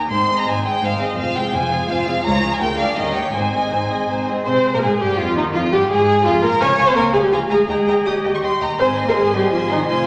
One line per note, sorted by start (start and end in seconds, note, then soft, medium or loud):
0.10 0.41 G#1 medium
0.10 0.41 G#2 medium
0.10 0.28 C4 soft
0.10 0.28 D#4 soft
0.10 0.28 C5 soft
0.10 0.37 C6 medium
0.30 0.47 G#3 soft
0.30 0.47 C4 soft
0.30 0.47 G#4 soft
0.30 0.47 D#5 soft
0.38 0.47 A#5 medium
0.47 0.77 G#1 medium
0.47 0.77 G#2 medium
0.47 0.65 C4 soft
0.47 0.66 D#4 soft
0.47 0.65 C5 soft
0.47 0.65 G#5 medium
0.65 0.84 G#3 soft
0.65 0.83 C4 soft
0.65 0.83 G#4 soft
0.65 0.83 D#5 soft
0.65 0.83 G5 medium
0.83 1.13 G#1 medium
0.83 1.13 G#2 medium
0.83 1.00 C4 soft
0.83 1.00 D#4 soft
0.83 1.00 C5 soft
0.83 1.02 F5 medium
1.00 1.19 G#3 soft
1.00 1.19 C4 soft
1.00 1.19 G#4 soft
1.00 1.19 D#5 soft
1.00 1.19 D#5 medium
1.18 1.49 F1 medium
1.18 1.48 F2 medium
1.18 1.35 F3 soft
1.18 1.35 F4 soft
1.18 1.36 F4 soft
1.18 1.35 C5 soft
1.18 1.36 F5 medium
1.36 1.54 G#3 soft
1.36 1.54 C4 soft
1.36 1.55 G#4 soft
1.36 1.54 F5 soft
1.36 1.54 G5 medium
1.54 1.84 F1 medium
1.54 1.84 F2 medium
1.54 1.72 F3 soft
1.54 1.72 F4 soft
1.54 1.72 C5 soft
1.54 1.89 G#5 medium
1.71 1.90 G#3 soft
1.71 1.90 C4 soft
1.71 1.89 G#4 soft
1.71 1.89 F5 soft
1.89 2.19 F1 medium
1.89 2.19 F2 medium
1.89 2.06 F3 soft
1.89 2.06 F4 soft
1.89 2.06 F4 medium
1.89 2.06 C5 soft
1.89 2.25 F5 medium
2.07 2.25 G#3 medium
2.07 2.25 C4 medium
2.07 2.25 G#4 soft
2.07 2.25 F5 soft
2.24 2.55 C#2 medium
2.24 2.42 F3 medium
2.24 2.42 F4 medium
2.24 2.42 C#5 medium
2.24 2.51 A#5 medium
2.42 2.60 G#3 medium
2.42 2.61 C#4 soft
2.42 2.61 G#4 medium
2.42 2.61 F5 soft
2.52 2.61 G#5 medium
2.60 2.91 D2 medium
2.60 2.92 D2 medium
2.60 2.78 G#3 soft
2.60 2.78 F4 medium
2.60 2.78 A#4 medium
2.60 2.78 G5 medium
2.78 2.98 A#3 soft
2.78 2.98 D4 soft
2.78 2.97 G#4 soft
2.78 2.97 D5 soft
2.78 2.96 F5 medium
2.97 3.28 D#2 medium
2.97 3.14 G3 soft
2.97 3.14 C#4 soft
2.97 3.15 D#4 soft
2.97 3.14 A#4 soft
2.97 3.16 D#5 medium
3.14 3.34 A#3 soft
3.14 3.33 D#4 soft
3.14 3.34 G4 soft
3.14 3.35 C#5 soft
3.14 3.34 G5 medium
3.33 3.66 G#1 medium
3.33 3.66 G#2 medium
3.33 3.52 C4 soft
3.33 3.52 D#4 soft
3.33 3.52 C5 soft
3.33 4.26 G#5 medium
3.53 3.73 G#3 soft
3.53 3.72 C4 soft
3.53 3.72 G#4 soft
3.53 3.72 D#5 soft
3.71 4.03 G#1 medium
3.71 4.04 G#2 medium
3.71 3.91 C4 soft
3.71 3.91 D#4 soft
3.71 3.91 C5 soft
3.91 4.10 G#3 soft
3.91 4.08 C4 soft
3.91 4.10 G#4 soft
3.91 4.10 D#5 soft
4.10 4.41 G#1 soft
4.10 4.41 G#2 medium
4.10 4.27 C4 soft
4.10 4.27 D#4 soft
4.10 4.28 C5 soft
4.28 4.47 G#3 soft
4.28 4.47 C4 soft
4.28 4.47 G#4 soft
4.28 4.47 D#5 soft
4.46 4.54 C3 medium
4.46 4.72 C4 medium
4.46 4.54 C5 medium
4.46 4.72 C5 medium
4.74 4.77 A#2 medium
4.74 4.83 A#3 medium
4.74 4.77 A#4 medium
4.74 4.78 A#4 medium
4.82 4.90 G#2 medium
4.82 4.90 G#3 medium
4.82 4.89 G#4 medium
4.82 5.00 G#4 medium
4.82 4.91 G#4 medium
5.00 5.18 G2 medium
5.00 5.18 G3 medium
5.00 5.18 G4 medium
5.00 5.19 G4 medium
5.18 5.36 F2 medium
5.18 5.36 F3 medium
5.18 5.36 F4 medium
5.18 5.37 F4 medium
5.18 5.36 F4 medium
5.36 5.54 D#2 medium
5.36 5.54 D#3 medium
5.36 5.44 D#4 medium
5.53 5.72 F2 medium
5.53 5.72 F3 medium
5.53 5.60 F4 medium
5.53 5.71 F4 medium
5.53 5.62 F4 medium
5.72 5.79 G2 medium
5.72 5.90 G3 medium
5.72 5.89 G4 medium
5.72 5.90 G4 medium
5.72 5.80 G4 medium
5.89 6.24 G#2 medium
5.89 6.25 G#3 medium
5.89 6.24 G#4 medium
5.89 6.25 G#4 medium
6.24 6.42 F2 medium
6.24 6.43 F3 medium
6.24 6.42 F4 medium
6.24 6.43 F4 medium
6.42 6.49 A#2 medium
6.42 6.49 A#3 medium
6.42 6.49 A#4 medium
6.42 6.61 A#4 medium
6.42 6.60 A#4 medium
6.60 6.67 C#2 medium
6.60 6.69 C#4 medium
6.60 6.88 C#5 medium
6.60 6.67 F5 medium
6.60 6.68 G#5 medium
6.77 6.84 C#2 medium
6.77 6.85 F5 medium
6.77 6.85 G#5 medium
6.77 6.86 G#5 soft
6.87 6.96 C4 medium
6.87 6.97 C5 medium
6.95 7.03 C#2 medium
6.95 7.13 A#3 medium
6.95 7.04 A#4 medium
6.95 7.03 F5 medium
6.95 7.03 G#5 medium
6.95 7.04 G#5 medium
7.13 7.21 C#2 medium
7.13 7.18 G#3 medium
7.13 7.18 G#4 medium
7.13 7.21 F5 soft
7.13 7.20 G#5 soft
7.13 7.22 G#5 soft
7.22 7.26 G3 medium
7.22 7.32 G4 medium
7.32 7.39 D2 medium
7.32 7.39 F3 medium
7.32 7.40 F4 medium
7.32 7.39 F5 medium
7.32 7.39 G#5 medium
7.32 7.39 A#5 medium
7.49 7.57 D2 medium
7.49 7.57 G#3 medium
7.49 7.69 G#4 medium
7.49 7.57 F5 soft
7.49 7.57 G#5 soft
7.49 7.58 A#5 soft
7.68 7.75 D#2 medium
7.68 8.06 G#3 medium
7.68 8.06 G#4 medium
7.68 7.76 D#5 soft
7.68 7.76 G5 medium
7.68 7.76 A#5 medium
7.87 7.94 D#2 soft
7.87 7.95 D#5 soft
7.87 7.95 G5 soft
7.87 7.95 A#5 soft
8.05 8.13 D#2 medium
8.05 8.43 G3 medium
8.05 8.43 G4 medium
8.05 8.13 D#5 soft
8.05 8.13 G5 soft
8.05 8.13 D#6 medium
8.24 8.32 D#2 soft
8.24 8.32 D#5 soft
8.24 8.32 G5 soft
8.34 8.38 C#6 medium
8.42 8.50 D#2 soft
8.42 8.50 D#5 soft
8.42 8.50 G5 soft
8.42 8.61 C6 medium
8.60 8.68 D#2 soft
8.60 8.68 D#5 soft
8.60 8.67 G5 soft
8.60 8.79 A#5 medium
8.78 9.11 G#1 medium
8.78 8.87 C4 medium
8.78 8.96 C5 medium
8.78 8.87 C5 medium
8.78 8.96 G#5 medium
8.78 8.96 C6 medium
8.96 9.15 D#5 soft
8.96 9.15 G#5 soft
8.96 9.15 C6 soft
9.06 9.10 A#3 medium
9.06 9.11 A#4 medium
9.15 9.48 G#1 medium
9.15 9.22 G#3 medium
9.15 9.33 G#4 medium
9.15 9.33 C5 soft
9.15 9.33 G#5 medium
9.15 9.33 C6 medium
9.32 9.51 G3 medium
9.32 9.51 G4 medium
9.32 9.51 D#5 soft
9.32 9.51 G#5 soft
9.32 9.51 C6 medium
9.51 9.84 G#1 medium
9.51 9.59 F3 medium
9.51 9.58 F4 medium
9.51 9.68 C5 medium
9.51 9.68 G#5 medium
9.51 9.68 C6 medium
9.68 9.88 D#3 medium
9.68 9.77 D#4 medium
9.68 9.88 D#5 soft
9.68 9.87 G#5 medium
9.68 9.87 C6 soft
9.86 10.07 F1 medium
9.86 9.96 F3 medium
9.86 10.05 F4 medium
9.86 10.04 C5 medium
9.86 10.04 G#5 medium
9.86 10.04 C6 medium
10.04 10.07 G#5 medium